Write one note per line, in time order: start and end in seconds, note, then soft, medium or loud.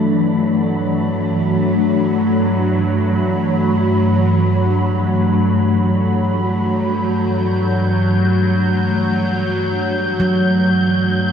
0.00 11.32 G2 medium
0.00 11.32 E3 medium
0.00 11.32 F#3 medium
0.00 11.32 A3 medium
0.00 11.32 D4 medium
0.00 6.66 B5 medium
6.66 11.32 G6 medium
10.20 11.32 F#3 medium